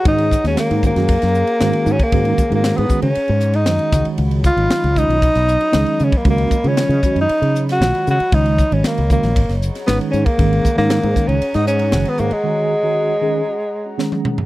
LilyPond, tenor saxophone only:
\new Staff \with { instrumentName = "Tenor saxophone" } { \time 4/4 \key gis \minor \tempo 4 = 116 dis'8. cis'16 ais8 ais2 cis'16 ais16~ | ais8. ais8 b8 cis'4 dis'4 r16 | r8 eis'4 dis'2 cis'16 ais16 | ais8. cis'4 dis'4 fis'8. fis'8 |
dis'8. cis'16 ais8 ais4 r8 b8 cis'16 ais16~ | ais8. ais4 cis'8 dis'16 cis'8. b16 ais16 gis16~ | gis2. r4 | }